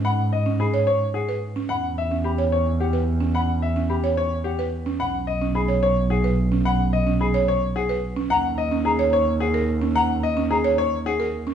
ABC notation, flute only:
X:1
M:3/4
L:1/16
Q:1/4=109
K:Elyd
V:1 name="Flute"
b z3 b z3 f z3 | b z3 b z3 f z3 | b z3 b z3 f z3 | b z3 b z3 f z3 |
b z3 b z3 f z3 | a z3 a z3 f z3 | a z3 a z3 f z3 |]